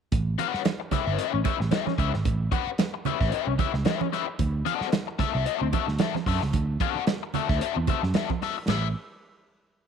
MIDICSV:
0, 0, Header, 1, 6, 480
1, 0, Start_track
1, 0, Tempo, 534759
1, 110, Time_signature, 4, 2, 24, 8
1, 8863, End_track
2, 0, Start_track
2, 0, Title_t, "Overdriven electric guitar"
2, 0, Program_c, 0, 29
2, 343, Note_on_c, 0, 61, 86
2, 347, Note_on_c, 0, 67, 86
2, 351, Note_on_c, 0, 71, 92
2, 355, Note_on_c, 0, 78, 105
2, 533, Note_off_c, 0, 61, 0
2, 535, Note_off_c, 0, 67, 0
2, 537, Note_off_c, 0, 71, 0
2, 539, Note_off_c, 0, 78, 0
2, 822, Note_on_c, 0, 61, 51
2, 826, Note_on_c, 0, 67, 62
2, 831, Note_on_c, 0, 71, 60
2, 834, Note_on_c, 0, 76, 57
2, 935, Note_off_c, 0, 61, 0
2, 938, Note_off_c, 0, 67, 0
2, 940, Note_off_c, 0, 71, 0
2, 941, Note_off_c, 0, 76, 0
2, 955, Note_on_c, 0, 76, 67
2, 962, Note_on_c, 0, 71, 65
2, 965, Note_on_c, 0, 67, 52
2, 969, Note_on_c, 0, 61, 53
2, 1045, Note_off_c, 0, 76, 0
2, 1049, Note_off_c, 0, 61, 0
2, 1049, Note_off_c, 0, 71, 0
2, 1050, Note_off_c, 0, 67, 0
2, 1060, Note_on_c, 0, 61, 80
2, 1065, Note_on_c, 0, 67, 71
2, 1069, Note_on_c, 0, 71, 85
2, 1072, Note_on_c, 0, 76, 83
2, 1183, Note_off_c, 0, 76, 0
2, 1191, Note_off_c, 0, 71, 0
2, 1194, Note_off_c, 0, 67, 0
2, 1250, Note_off_c, 0, 61, 0
2, 1294, Note_on_c, 0, 61, 49
2, 1301, Note_on_c, 0, 67, 46
2, 1304, Note_on_c, 0, 71, 53
2, 1306, Note_on_c, 0, 76, 55
2, 1411, Note_off_c, 0, 61, 0
2, 1414, Note_off_c, 0, 67, 0
2, 1416, Note_off_c, 0, 71, 0
2, 1417, Note_off_c, 0, 76, 0
2, 1538, Note_on_c, 0, 61, 73
2, 1545, Note_on_c, 0, 67, 85
2, 1547, Note_on_c, 0, 71, 84
2, 1551, Note_on_c, 0, 76, 80
2, 1663, Note_off_c, 0, 76, 0
2, 1666, Note_off_c, 0, 71, 0
2, 1673, Note_off_c, 0, 67, 0
2, 1729, Note_off_c, 0, 61, 0
2, 1778, Note_on_c, 0, 61, 59
2, 1781, Note_on_c, 0, 67, 58
2, 1786, Note_on_c, 0, 71, 64
2, 1790, Note_on_c, 0, 76, 65
2, 1892, Note_off_c, 0, 61, 0
2, 1894, Note_off_c, 0, 67, 0
2, 1896, Note_off_c, 0, 71, 0
2, 1898, Note_off_c, 0, 76, 0
2, 2258, Note_on_c, 0, 61, 89
2, 2264, Note_on_c, 0, 67, 82
2, 2267, Note_on_c, 0, 71, 85
2, 2269, Note_on_c, 0, 78, 93
2, 2401, Note_off_c, 0, 61, 0
2, 2404, Note_off_c, 0, 67, 0
2, 2405, Note_off_c, 0, 71, 0
2, 2407, Note_off_c, 0, 78, 0
2, 2745, Note_on_c, 0, 61, 55
2, 2749, Note_on_c, 0, 67, 55
2, 2752, Note_on_c, 0, 71, 63
2, 2757, Note_on_c, 0, 76, 57
2, 2855, Note_off_c, 0, 61, 0
2, 2857, Note_off_c, 0, 67, 0
2, 2859, Note_off_c, 0, 71, 0
2, 2861, Note_off_c, 0, 76, 0
2, 2875, Note_on_c, 0, 76, 56
2, 2878, Note_on_c, 0, 71, 49
2, 2885, Note_on_c, 0, 67, 45
2, 2887, Note_on_c, 0, 61, 45
2, 2964, Note_off_c, 0, 76, 0
2, 2965, Note_off_c, 0, 71, 0
2, 2967, Note_off_c, 0, 61, 0
2, 2968, Note_off_c, 0, 67, 0
2, 2977, Note_on_c, 0, 61, 75
2, 2982, Note_on_c, 0, 67, 85
2, 2986, Note_on_c, 0, 71, 88
2, 2988, Note_on_c, 0, 76, 80
2, 3107, Note_off_c, 0, 76, 0
2, 3111, Note_off_c, 0, 71, 0
2, 3115, Note_off_c, 0, 67, 0
2, 3168, Note_off_c, 0, 61, 0
2, 3218, Note_on_c, 0, 61, 54
2, 3224, Note_on_c, 0, 67, 51
2, 3228, Note_on_c, 0, 71, 58
2, 3231, Note_on_c, 0, 76, 58
2, 3332, Note_off_c, 0, 61, 0
2, 3335, Note_off_c, 0, 67, 0
2, 3337, Note_off_c, 0, 71, 0
2, 3338, Note_off_c, 0, 76, 0
2, 3459, Note_on_c, 0, 61, 74
2, 3467, Note_on_c, 0, 67, 82
2, 3470, Note_on_c, 0, 71, 91
2, 3472, Note_on_c, 0, 76, 85
2, 3590, Note_off_c, 0, 76, 0
2, 3592, Note_off_c, 0, 71, 0
2, 3596, Note_off_c, 0, 67, 0
2, 3649, Note_off_c, 0, 61, 0
2, 3702, Note_on_c, 0, 61, 59
2, 3708, Note_on_c, 0, 67, 69
2, 3711, Note_on_c, 0, 71, 66
2, 3716, Note_on_c, 0, 76, 69
2, 3814, Note_off_c, 0, 61, 0
2, 3817, Note_off_c, 0, 67, 0
2, 3819, Note_off_c, 0, 71, 0
2, 3821, Note_off_c, 0, 76, 0
2, 4177, Note_on_c, 0, 60, 89
2, 4182, Note_on_c, 0, 66, 85
2, 4186, Note_on_c, 0, 69, 85
2, 4187, Note_on_c, 0, 78, 88
2, 4368, Note_off_c, 0, 60, 0
2, 4371, Note_off_c, 0, 66, 0
2, 4373, Note_off_c, 0, 69, 0
2, 4374, Note_off_c, 0, 78, 0
2, 4655, Note_on_c, 0, 60, 61
2, 4660, Note_on_c, 0, 66, 71
2, 4664, Note_on_c, 0, 69, 75
2, 4667, Note_on_c, 0, 76, 72
2, 4772, Note_off_c, 0, 60, 0
2, 4774, Note_off_c, 0, 66, 0
2, 4776, Note_off_c, 0, 69, 0
2, 4778, Note_off_c, 0, 76, 0
2, 4791, Note_on_c, 0, 76, 62
2, 4797, Note_on_c, 0, 69, 57
2, 4799, Note_on_c, 0, 66, 53
2, 4803, Note_on_c, 0, 60, 47
2, 4883, Note_off_c, 0, 76, 0
2, 4886, Note_off_c, 0, 60, 0
2, 4886, Note_off_c, 0, 69, 0
2, 4887, Note_off_c, 0, 66, 0
2, 4897, Note_on_c, 0, 60, 93
2, 4903, Note_on_c, 0, 66, 96
2, 4905, Note_on_c, 0, 69, 83
2, 4908, Note_on_c, 0, 76, 99
2, 5025, Note_off_c, 0, 76, 0
2, 5032, Note_off_c, 0, 69, 0
2, 5035, Note_off_c, 0, 66, 0
2, 5089, Note_off_c, 0, 60, 0
2, 5141, Note_on_c, 0, 60, 48
2, 5147, Note_on_c, 0, 66, 54
2, 5150, Note_on_c, 0, 69, 53
2, 5155, Note_on_c, 0, 76, 58
2, 5256, Note_off_c, 0, 60, 0
2, 5259, Note_off_c, 0, 66, 0
2, 5260, Note_off_c, 0, 69, 0
2, 5262, Note_off_c, 0, 76, 0
2, 5385, Note_on_c, 0, 60, 80
2, 5389, Note_on_c, 0, 66, 88
2, 5394, Note_on_c, 0, 69, 94
2, 5400, Note_on_c, 0, 76, 82
2, 5511, Note_off_c, 0, 76, 0
2, 5516, Note_off_c, 0, 69, 0
2, 5520, Note_off_c, 0, 66, 0
2, 5527, Note_off_c, 0, 60, 0
2, 5625, Note_on_c, 0, 60, 63
2, 5632, Note_on_c, 0, 66, 67
2, 5637, Note_on_c, 0, 69, 73
2, 5639, Note_on_c, 0, 76, 76
2, 5738, Note_off_c, 0, 60, 0
2, 5742, Note_off_c, 0, 66, 0
2, 5744, Note_off_c, 0, 69, 0
2, 5745, Note_off_c, 0, 76, 0
2, 6110, Note_on_c, 0, 60, 86
2, 6113, Note_on_c, 0, 66, 83
2, 6117, Note_on_c, 0, 69, 84
2, 6120, Note_on_c, 0, 78, 84
2, 6298, Note_off_c, 0, 60, 0
2, 6299, Note_off_c, 0, 66, 0
2, 6302, Note_off_c, 0, 69, 0
2, 6303, Note_off_c, 0, 78, 0
2, 6591, Note_on_c, 0, 60, 54
2, 6597, Note_on_c, 0, 66, 67
2, 6601, Note_on_c, 0, 69, 68
2, 6604, Note_on_c, 0, 76, 69
2, 6703, Note_off_c, 0, 60, 0
2, 6705, Note_off_c, 0, 66, 0
2, 6707, Note_off_c, 0, 69, 0
2, 6709, Note_off_c, 0, 76, 0
2, 6723, Note_on_c, 0, 76, 60
2, 6727, Note_on_c, 0, 69, 56
2, 6731, Note_on_c, 0, 66, 52
2, 6737, Note_on_c, 0, 60, 50
2, 6812, Note_off_c, 0, 76, 0
2, 6814, Note_off_c, 0, 69, 0
2, 6816, Note_off_c, 0, 66, 0
2, 6819, Note_off_c, 0, 60, 0
2, 6833, Note_on_c, 0, 60, 80
2, 6838, Note_on_c, 0, 66, 82
2, 6844, Note_on_c, 0, 69, 83
2, 6845, Note_on_c, 0, 76, 97
2, 6960, Note_off_c, 0, 76, 0
2, 6965, Note_off_c, 0, 69, 0
2, 6971, Note_off_c, 0, 66, 0
2, 6973, Note_off_c, 0, 60, 0
2, 7074, Note_on_c, 0, 60, 48
2, 7082, Note_on_c, 0, 66, 50
2, 7084, Note_on_c, 0, 69, 51
2, 7088, Note_on_c, 0, 76, 52
2, 7184, Note_off_c, 0, 60, 0
2, 7188, Note_off_c, 0, 66, 0
2, 7190, Note_off_c, 0, 69, 0
2, 7192, Note_off_c, 0, 76, 0
2, 7314, Note_on_c, 0, 60, 66
2, 7320, Note_on_c, 0, 66, 76
2, 7324, Note_on_c, 0, 69, 76
2, 7328, Note_on_c, 0, 76, 77
2, 7441, Note_off_c, 0, 76, 0
2, 7446, Note_off_c, 0, 69, 0
2, 7448, Note_off_c, 0, 66, 0
2, 7454, Note_off_c, 0, 60, 0
2, 7561, Note_on_c, 0, 60, 59
2, 7564, Note_on_c, 0, 66, 58
2, 7568, Note_on_c, 0, 69, 65
2, 7571, Note_on_c, 0, 76, 63
2, 7668, Note_off_c, 0, 60, 0
2, 7670, Note_off_c, 0, 66, 0
2, 7672, Note_off_c, 0, 69, 0
2, 7673, Note_off_c, 0, 76, 0
2, 7798, Note_on_c, 0, 61, 74
2, 7802, Note_on_c, 0, 67, 70
2, 7807, Note_on_c, 0, 71, 81
2, 7810, Note_on_c, 0, 76, 89
2, 7951, Note_off_c, 0, 61, 0
2, 7953, Note_off_c, 0, 67, 0
2, 7955, Note_off_c, 0, 71, 0
2, 7957, Note_off_c, 0, 76, 0
2, 8863, End_track
3, 0, Start_track
3, 0, Title_t, "Picked electric bass"
3, 0, Program_c, 1, 34
3, 111, Note_on_c, 1, 33, 96
3, 307, Note_off_c, 1, 33, 0
3, 963, Note_on_c, 1, 31, 87
3, 1048, Note_off_c, 1, 31, 0
3, 1202, Note_on_c, 1, 33, 79
3, 1287, Note_off_c, 1, 33, 0
3, 1438, Note_on_c, 1, 33, 73
3, 1525, Note_off_c, 1, 33, 0
3, 1783, Note_on_c, 1, 37, 90
3, 1893, Note_off_c, 1, 37, 0
3, 1918, Note_on_c, 1, 32, 75
3, 2005, Note_off_c, 1, 32, 0
3, 2024, Note_on_c, 1, 33, 101
3, 2221, Note_off_c, 1, 33, 0
3, 2882, Note_on_c, 1, 33, 83
3, 2967, Note_off_c, 1, 33, 0
3, 3116, Note_on_c, 1, 36, 81
3, 3203, Note_off_c, 1, 36, 0
3, 3355, Note_on_c, 1, 37, 93
3, 3443, Note_off_c, 1, 37, 0
3, 3943, Note_on_c, 1, 38, 91
3, 4142, Note_off_c, 1, 38, 0
3, 4802, Note_on_c, 1, 36, 81
3, 4888, Note_off_c, 1, 36, 0
3, 5041, Note_on_c, 1, 38, 88
3, 5128, Note_off_c, 1, 38, 0
3, 5279, Note_on_c, 1, 38, 78
3, 5367, Note_off_c, 1, 38, 0
3, 5623, Note_on_c, 1, 42, 75
3, 5736, Note_off_c, 1, 42, 0
3, 5763, Note_on_c, 1, 37, 73
3, 5850, Note_off_c, 1, 37, 0
3, 5870, Note_on_c, 1, 38, 97
3, 6067, Note_off_c, 1, 38, 0
3, 6728, Note_on_c, 1, 38, 93
3, 6814, Note_off_c, 1, 38, 0
3, 6967, Note_on_c, 1, 40, 79
3, 7054, Note_off_c, 1, 40, 0
3, 7208, Note_on_c, 1, 42, 76
3, 7294, Note_off_c, 1, 42, 0
3, 7794, Note_on_c, 1, 33, 86
3, 8016, Note_off_c, 1, 33, 0
3, 8863, End_track
4, 0, Start_track
4, 0, Title_t, "Muted overdriven electric guitar strokes"
4, 584, Note_on_c, 9, 29, 44
4, 674, Note_off_c, 9, 29, 0
4, 716, Note_on_c, 9, 29, 46
4, 805, Note_off_c, 9, 29, 0
4, 1194, Note_on_c, 9, 29, 41
4, 1283, Note_off_c, 9, 29, 0
4, 1435, Note_on_c, 9, 29, 40
4, 1524, Note_off_c, 9, 29, 0
4, 1674, Note_on_c, 9, 29, 46
4, 1764, Note_off_c, 9, 29, 0
4, 1919, Note_on_c, 9, 29, 44
4, 2009, Note_off_c, 9, 29, 0
4, 2505, Note_on_c, 9, 29, 37
4, 2595, Note_off_c, 9, 29, 0
4, 2637, Note_on_c, 9, 29, 44
4, 2727, Note_off_c, 9, 29, 0
4, 3117, Note_on_c, 9, 29, 46
4, 3207, Note_off_c, 9, 29, 0
4, 3356, Note_on_c, 9, 29, 54
4, 3446, Note_off_c, 9, 29, 0
4, 3600, Note_on_c, 9, 29, 44
4, 3690, Note_off_c, 9, 29, 0
4, 3837, Note_on_c, 9, 29, 41
4, 3926, Note_off_c, 9, 29, 0
4, 4419, Note_on_c, 9, 29, 44
4, 4509, Note_off_c, 9, 29, 0
4, 4552, Note_on_c, 9, 29, 42
4, 4642, Note_off_c, 9, 29, 0
4, 5036, Note_on_c, 9, 29, 41
4, 5126, Note_off_c, 9, 29, 0
4, 5273, Note_on_c, 9, 29, 46
4, 5362, Note_off_c, 9, 29, 0
4, 5522, Note_on_c, 9, 29, 54
4, 5612, Note_off_c, 9, 29, 0
4, 5762, Note_on_c, 9, 29, 55
4, 5852, Note_off_c, 9, 29, 0
4, 6353, Note_on_c, 9, 29, 35
4, 6443, Note_off_c, 9, 29, 0
4, 6489, Note_on_c, 9, 29, 48
4, 6579, Note_off_c, 9, 29, 0
4, 6971, Note_on_c, 9, 29, 47
4, 7061, Note_off_c, 9, 29, 0
4, 7210, Note_on_c, 9, 29, 41
4, 7299, Note_off_c, 9, 29, 0
4, 7452, Note_on_c, 9, 29, 46
4, 7542, Note_off_c, 9, 29, 0
4, 7700, Note_on_c, 9, 29, 39
4, 7789, Note_off_c, 9, 29, 0
4, 8863, End_track
5, 0, Start_track
5, 0, Title_t, "Muted picked electric bass strokes"
5, 487, Note_on_c, 9, 29, 43
5, 577, Note_off_c, 9, 29, 0
5, 822, Note_on_c, 9, 29, 40
5, 912, Note_off_c, 9, 29, 0
5, 2399, Note_on_c, 9, 29, 44
5, 2488, Note_off_c, 9, 29, 0
5, 2739, Note_on_c, 9, 29, 41
5, 2829, Note_off_c, 9, 29, 0
5, 4317, Note_on_c, 9, 29, 48
5, 4407, Note_off_c, 9, 29, 0
5, 4661, Note_on_c, 9, 29, 42
5, 4751, Note_off_c, 9, 29, 0
5, 6243, Note_on_c, 9, 29, 44
5, 6333, Note_off_c, 9, 29, 0
5, 6592, Note_on_c, 9, 29, 44
5, 6682, Note_off_c, 9, 29, 0
5, 8863, End_track
6, 0, Start_track
6, 0, Title_t, "Drums"
6, 107, Note_on_c, 9, 42, 92
6, 107, Note_on_c, 9, 62, 42
6, 110, Note_on_c, 9, 36, 103
6, 197, Note_off_c, 9, 42, 0
6, 197, Note_off_c, 9, 62, 0
6, 199, Note_off_c, 9, 36, 0
6, 348, Note_on_c, 9, 42, 67
6, 352, Note_on_c, 9, 62, 35
6, 437, Note_off_c, 9, 42, 0
6, 442, Note_off_c, 9, 62, 0
6, 484, Note_on_c, 9, 38, 27
6, 574, Note_off_c, 9, 38, 0
6, 583, Note_on_c, 9, 42, 78
6, 588, Note_on_c, 9, 38, 95
6, 589, Note_on_c, 9, 63, 78
6, 673, Note_off_c, 9, 42, 0
6, 678, Note_off_c, 9, 38, 0
6, 678, Note_off_c, 9, 63, 0
6, 820, Note_on_c, 9, 64, 80
6, 822, Note_on_c, 9, 36, 85
6, 827, Note_on_c, 9, 42, 68
6, 830, Note_on_c, 9, 38, 32
6, 910, Note_off_c, 9, 64, 0
6, 912, Note_off_c, 9, 36, 0
6, 917, Note_off_c, 9, 42, 0
6, 920, Note_off_c, 9, 38, 0
6, 1064, Note_on_c, 9, 42, 99
6, 1154, Note_off_c, 9, 42, 0
6, 1301, Note_on_c, 9, 62, 53
6, 1305, Note_on_c, 9, 42, 55
6, 1306, Note_on_c, 9, 36, 85
6, 1391, Note_off_c, 9, 62, 0
6, 1394, Note_off_c, 9, 42, 0
6, 1396, Note_off_c, 9, 36, 0
6, 1443, Note_on_c, 9, 38, 35
6, 1532, Note_off_c, 9, 38, 0
6, 1538, Note_on_c, 9, 42, 85
6, 1541, Note_on_c, 9, 63, 68
6, 1549, Note_on_c, 9, 38, 99
6, 1628, Note_off_c, 9, 42, 0
6, 1631, Note_off_c, 9, 63, 0
6, 1639, Note_off_c, 9, 38, 0
6, 1678, Note_on_c, 9, 63, 66
6, 1684, Note_on_c, 9, 38, 29
6, 1767, Note_off_c, 9, 63, 0
6, 1774, Note_off_c, 9, 38, 0
6, 1780, Note_on_c, 9, 36, 84
6, 1789, Note_on_c, 9, 42, 60
6, 1870, Note_off_c, 9, 36, 0
6, 1879, Note_off_c, 9, 42, 0
6, 1917, Note_on_c, 9, 38, 33
6, 2007, Note_off_c, 9, 38, 0
6, 2022, Note_on_c, 9, 42, 88
6, 2022, Note_on_c, 9, 62, 42
6, 2023, Note_on_c, 9, 36, 109
6, 2111, Note_off_c, 9, 62, 0
6, 2112, Note_off_c, 9, 42, 0
6, 2113, Note_off_c, 9, 36, 0
6, 2259, Note_on_c, 9, 36, 93
6, 2262, Note_on_c, 9, 42, 72
6, 2268, Note_on_c, 9, 62, 32
6, 2349, Note_off_c, 9, 36, 0
6, 2352, Note_off_c, 9, 42, 0
6, 2358, Note_off_c, 9, 62, 0
6, 2498, Note_on_c, 9, 42, 73
6, 2503, Note_on_c, 9, 38, 93
6, 2509, Note_on_c, 9, 63, 80
6, 2588, Note_off_c, 9, 42, 0
6, 2593, Note_off_c, 9, 38, 0
6, 2599, Note_off_c, 9, 63, 0
6, 2739, Note_on_c, 9, 64, 81
6, 2747, Note_on_c, 9, 42, 71
6, 2829, Note_off_c, 9, 64, 0
6, 2837, Note_off_c, 9, 42, 0
6, 2878, Note_on_c, 9, 36, 94
6, 2878, Note_on_c, 9, 38, 30
6, 2968, Note_off_c, 9, 36, 0
6, 2968, Note_off_c, 9, 38, 0
6, 2979, Note_on_c, 9, 42, 85
6, 3069, Note_off_c, 9, 42, 0
6, 3220, Note_on_c, 9, 42, 62
6, 3223, Note_on_c, 9, 36, 83
6, 3223, Note_on_c, 9, 62, 58
6, 3223, Note_on_c, 9, 64, 64
6, 3310, Note_off_c, 9, 42, 0
6, 3313, Note_off_c, 9, 36, 0
6, 3313, Note_off_c, 9, 62, 0
6, 3313, Note_off_c, 9, 64, 0
6, 3357, Note_on_c, 9, 38, 34
6, 3447, Note_off_c, 9, 38, 0
6, 3455, Note_on_c, 9, 42, 70
6, 3460, Note_on_c, 9, 63, 70
6, 3465, Note_on_c, 9, 38, 100
6, 3544, Note_off_c, 9, 42, 0
6, 3550, Note_off_c, 9, 63, 0
6, 3555, Note_off_c, 9, 38, 0
6, 3599, Note_on_c, 9, 63, 71
6, 3689, Note_off_c, 9, 63, 0
6, 3704, Note_on_c, 9, 38, 27
6, 3708, Note_on_c, 9, 42, 59
6, 3794, Note_off_c, 9, 38, 0
6, 3798, Note_off_c, 9, 42, 0
6, 3941, Note_on_c, 9, 62, 48
6, 3943, Note_on_c, 9, 36, 100
6, 3943, Note_on_c, 9, 42, 84
6, 4030, Note_off_c, 9, 62, 0
6, 4032, Note_off_c, 9, 42, 0
6, 4033, Note_off_c, 9, 36, 0
6, 4185, Note_on_c, 9, 42, 72
6, 4188, Note_on_c, 9, 62, 37
6, 4275, Note_off_c, 9, 42, 0
6, 4278, Note_off_c, 9, 62, 0
6, 4320, Note_on_c, 9, 38, 28
6, 4410, Note_off_c, 9, 38, 0
6, 4420, Note_on_c, 9, 42, 75
6, 4424, Note_on_c, 9, 38, 97
6, 4428, Note_on_c, 9, 63, 77
6, 4509, Note_off_c, 9, 42, 0
6, 4514, Note_off_c, 9, 38, 0
6, 4517, Note_off_c, 9, 63, 0
6, 4656, Note_on_c, 9, 64, 70
6, 4659, Note_on_c, 9, 36, 103
6, 4667, Note_on_c, 9, 42, 77
6, 4670, Note_on_c, 9, 38, 34
6, 4746, Note_off_c, 9, 64, 0
6, 4749, Note_off_c, 9, 36, 0
6, 4757, Note_off_c, 9, 42, 0
6, 4760, Note_off_c, 9, 38, 0
6, 4901, Note_on_c, 9, 42, 97
6, 4991, Note_off_c, 9, 42, 0
6, 5142, Note_on_c, 9, 42, 61
6, 5144, Note_on_c, 9, 62, 54
6, 5145, Note_on_c, 9, 36, 83
6, 5232, Note_off_c, 9, 42, 0
6, 5233, Note_off_c, 9, 62, 0
6, 5235, Note_off_c, 9, 36, 0
6, 5279, Note_on_c, 9, 38, 34
6, 5369, Note_off_c, 9, 38, 0
6, 5373, Note_on_c, 9, 42, 85
6, 5380, Note_on_c, 9, 63, 73
6, 5383, Note_on_c, 9, 38, 94
6, 5462, Note_off_c, 9, 42, 0
6, 5470, Note_off_c, 9, 63, 0
6, 5473, Note_off_c, 9, 38, 0
6, 5519, Note_on_c, 9, 63, 61
6, 5523, Note_on_c, 9, 38, 29
6, 5608, Note_off_c, 9, 63, 0
6, 5613, Note_off_c, 9, 38, 0
6, 5622, Note_on_c, 9, 36, 86
6, 5628, Note_on_c, 9, 46, 60
6, 5712, Note_off_c, 9, 36, 0
6, 5718, Note_off_c, 9, 46, 0
6, 5757, Note_on_c, 9, 38, 34
6, 5847, Note_off_c, 9, 38, 0
6, 5864, Note_on_c, 9, 62, 47
6, 5867, Note_on_c, 9, 36, 100
6, 5867, Note_on_c, 9, 42, 87
6, 5954, Note_off_c, 9, 62, 0
6, 5957, Note_off_c, 9, 36, 0
6, 5957, Note_off_c, 9, 42, 0
6, 6104, Note_on_c, 9, 36, 84
6, 6107, Note_on_c, 9, 42, 71
6, 6110, Note_on_c, 9, 62, 38
6, 6194, Note_off_c, 9, 36, 0
6, 6197, Note_off_c, 9, 42, 0
6, 6200, Note_off_c, 9, 62, 0
6, 6343, Note_on_c, 9, 42, 71
6, 6348, Note_on_c, 9, 38, 97
6, 6352, Note_on_c, 9, 63, 81
6, 6433, Note_off_c, 9, 42, 0
6, 6438, Note_off_c, 9, 38, 0
6, 6441, Note_off_c, 9, 63, 0
6, 6586, Note_on_c, 9, 64, 82
6, 6592, Note_on_c, 9, 42, 71
6, 6676, Note_off_c, 9, 64, 0
6, 6682, Note_off_c, 9, 42, 0
6, 6726, Note_on_c, 9, 36, 104
6, 6727, Note_on_c, 9, 38, 34
6, 6816, Note_off_c, 9, 36, 0
6, 6817, Note_off_c, 9, 38, 0
6, 6831, Note_on_c, 9, 42, 99
6, 6921, Note_off_c, 9, 42, 0
6, 7067, Note_on_c, 9, 62, 54
6, 7067, Note_on_c, 9, 64, 67
6, 7070, Note_on_c, 9, 42, 61
6, 7073, Note_on_c, 9, 36, 83
6, 7157, Note_off_c, 9, 62, 0
6, 7157, Note_off_c, 9, 64, 0
6, 7159, Note_off_c, 9, 42, 0
6, 7163, Note_off_c, 9, 36, 0
6, 7210, Note_on_c, 9, 38, 36
6, 7300, Note_off_c, 9, 38, 0
6, 7305, Note_on_c, 9, 42, 84
6, 7308, Note_on_c, 9, 63, 71
6, 7316, Note_on_c, 9, 38, 106
6, 7395, Note_off_c, 9, 42, 0
6, 7398, Note_off_c, 9, 63, 0
6, 7406, Note_off_c, 9, 38, 0
6, 7447, Note_on_c, 9, 63, 69
6, 7449, Note_on_c, 9, 36, 85
6, 7537, Note_off_c, 9, 63, 0
6, 7539, Note_off_c, 9, 36, 0
6, 7554, Note_on_c, 9, 38, 31
6, 7557, Note_on_c, 9, 46, 59
6, 7643, Note_off_c, 9, 38, 0
6, 7647, Note_off_c, 9, 46, 0
6, 7791, Note_on_c, 9, 52, 80
6, 7791, Note_on_c, 9, 62, 72
6, 7793, Note_on_c, 9, 38, 86
6, 7880, Note_off_c, 9, 52, 0
6, 7881, Note_off_c, 9, 62, 0
6, 7883, Note_off_c, 9, 38, 0
6, 8863, End_track
0, 0, End_of_file